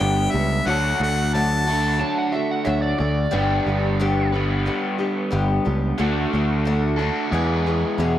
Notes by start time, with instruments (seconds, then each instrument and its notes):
Already playing: overdriven electric guitar G3 B3 D4 B4, harmonica G5
0.00 picked electric bass G1, steel-string acoustic guitar G2 D3 G3 B3 D4 G4
0.31 picked electric bass C#2, steel-string acoustic guitar B3 D4 G4, harmonica E5
0.36 steel-string acoustic guitar G3
0.65 picked electric bass D2, steel-string acoustic guitar D3 F#3 A3 D4 F#4, harmonica F#5
0.70 overdriven electric guitar A4
1.00 picked electric bass D2, steel-string acoustic guitar A3 D4 F#4, harmonica F#5
1.34 steel-string acoustic guitar D3 F#3 A3 D4 F#4, harmonica A5
1.64 steel-string acoustic guitar A3 D4 F#4, overdriven electric guitar A4
1.69 overdriven electric guitar D3 D4 F#4
1.98 steel-string acoustic guitar F#3 A3 D4 F#4, electric slide guitar A5
2.18 electric slide guitar F#5
2.32 steel-string acoustic guitar A3 D4 F#4, electric slide guitar E5
2.51 electric slide guitar F#5
2.65 picked electric bass D2, steel-string acoustic guitar D3 F#3 A3 D4 F#4, electric slide guitar E5
2.82 electric slide guitar D5
2.98 picked electric bass D2, steel-string acoustic guitar A3 D4 F#4, electric slide guitar D5
3.31 picked electric bass G1, steel-string acoustic guitar G2 D3 G3 B3 D4 G4
3.36 overdriven electric guitar B4
3.66 picked electric bass G1, steel-string acoustic guitar G3 B3 D4 G4
4.00 steel-string acoustic guitar G2 D3 G3 B3 D4 G4
4.32 steel-string acoustic guitar G3 B3 D4 G4, overdriven electric guitar B4
4.66 steel-string acoustic guitar G3 B3 D4 G4
4.98 steel-string acoustic guitar G3 B3 D4 G4
5.31 picked electric bass G1, steel-string acoustic guitar G2 D3 G3 B3 D4 G4
5.65 picked electric bass C#2, steel-string acoustic guitar G3 B3 D4 G4
5.98 picked electric bass D2, steel-string acoustic guitar D3 A3 D4 F#4, overdriven electric guitar A4
6.33 picked electric bass D2, steel-string acoustic guitar A3 D4 F#4
6.65 steel-string acoustic guitar D3 A3 D4 F#4
6.97 overdriven electric guitar D3 A4, steel-string acoustic guitar F#4
7.01 steel-string acoustic guitar A3 D4
7.29 overdriven electric guitar E2 E4, picked electric bass E2, steel-string acoustic guitar E3
7.33 steel-string acoustic guitar G#3 B3 G#4
7.66 steel-string acoustic guitar E3 G#3 B3 G#4
7.98 steel-string acoustic guitar E2 B2 E3 G#3 B3 G#4, picked electric bass E2